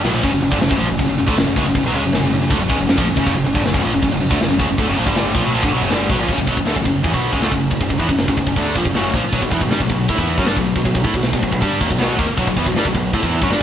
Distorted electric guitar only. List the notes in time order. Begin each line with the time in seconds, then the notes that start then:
0.04 B2 F#3
0.14 A#2 F3
0.24 F#2 C#3
0.33 F#2 C#3
0.42 F#2 C#3
0.51 G2 D3
0.61 F#2 C#3
0.70 F#2 C#3
0.79 A#2 F3
0.90 F#2 C#3
1.00 F#2 C#3
1.09 F#2 C#3
1.18 F#2 C#3
1.27 D3 A3
1.37 F#2 C#3
1.47 F#2 C#3
1.57 C#3 G#3
1.67 F#2 C#3
1.76 F#2 C#3
1.86 B2 F#3
1.95 C#3 G#3
2.05 F#2 C#3
2.14 F#2 C#3
2.25 F#2 C#3
2.33 F#2 C#3
2.42 F#2 C#3
2.51 D3 A3
2.61 F#2 C#3
2.69 C#3 G#3
2.80 F#2 C#3
2.89 F#2 C#3
2.97 A#2 F3
3.07 F#2 C#3
3.17 F#2 C#3
3.26 F#2 C#3
3.35 F#2 C#3
3.46 F#2 C#3
3.55 G2 D3
3.64 F#2 C#3
3.74 F#2 C#3
3.84 A#2 F3
3.93 F#2 C#3
4.02 F#2 C#3
4.12 F#2 C#3
4.21 F#2 C#3
4.31 D3 A3
4.41 F#2 C#3
4.50 F#2 C#3
4.60 C#3 G#3
4.69 F#2 C#3
4.77 D3 A3
4.87 F#2 C#3
4.97 A#2 F3
5.05 G2 D3 G3
5.34 A#2 F3
5.44 B2 F#3
5.53 A#2 F3
5.63 G2 D3
5.72 B2 F#3
5.82 F#2 C#3
5.91 G2 D3 G3
6.10 B2 F#3
6.19 A#2 F3
6.29 F#2 C#3
6.38 F#2 C#3
6.47 B2 F#3
6.57 F#2 C#3
6.66 D3 A3
6.75 F#2 C#3
6.84 F#2 C#3
7.03 E3 B3
7.13 B2 F#3 B3
7.32 C#3 G#3
7.42 D3 A3
7.51 F#2 C#3
7.71 F#2 C#3
7.80 F#2 C#3
7.89 F#2 C#3
7.98 E3 B3
8.08 F#2 C#3
8.28 F#2 C#3
8.37 F#2 C#3
8.47 F#2 C#3
8.57 D3 A3 D4
8.76 A#2 F3
8.85 F#2 C#3
8.95 F#2 C#3 F#3
9.15 A#2 F3
9.25 muted distorted electric guitar stroke
9.34 B2 F#3
9.42 B2 F#3
9.52 E3 B3
9.62 B2 F#3
9.72 G3 D4
9.82 B2 F#3
9.91 B2 F#3
10.10 A3 E4
10.19 E3 B3 E4
10.38 F#3 C#4
10.47 G3 D4
10.57 B2 F#3
10.76 B2 F#3
10.85 B2 F#3
10.95 B2 F#3
11.04 A3 E4
11.14 B2 F#3
11.33 B2 F#3
11.42 B2 F#3
11.52 B2 F#3
11.61 G3 D4 G4
11.81 D#3 A#3
11.90 B2 F#3
11.99 B2 F#3 B3
12.18 D#3 A#3
12.28 muted distorted electric guitar stroke
12.37 B2 F#3
12.48 B2 F#3
12.57 E3 B3
12.68 B2 F#3
12.77 G3 D4
12.87 B2 F#3
12.96 B2 F#3
13.14 A3 E4
13.24 E3 B3 E4
13.43 F#3 C#4
13.52 G3 D4